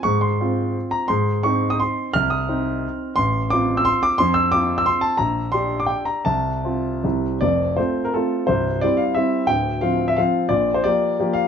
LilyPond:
\new Staff \with { instrumentName = "Grand piano" } { \time 3/4 \key c \phrygian \tempo 4 = 173 << { des'''8 c'''4. r8 bes''8 | c'''4 des'''8. ees'''16 c'''4 | f'''8 ees'''4. r4 | \key f \major c'''4 d'''8. e'''16 c'''8 d'''8 |
c'''8 e'''8 d'''8. e'''16 c'''8 a''8 | bes''4 c'''8. d'''16 g''8 bes''8 | a''2 r4 | d''4 c''8. bes'16 a'4 |
c''4 d''8 f''8 e''4 | g''4 f''8. e''16 f''4 | d''8. c''16 d''4. f''8 | } \\ { aes,4 <c' f'>2 | aes,4 <c' ees'>2 | c,4 <c' ees'>2 | a,,4 <c' f'>2 |
f,4 <c' f'>2 | bes,,4 <d' g'>2 | c,4 <c' f'>4 <c, g c' e'>4 | <f,, f,>4 <a c' f'>4 <a c' f'>4 |
<c,, c,>4 <g c' e'>4 <g c' e'>4 | <d,, d,>4 <f c' f'>4 <f c' f'>4 | <bes,, bes,>4 <f bes g'>4 <f bes g'>4 | } >> }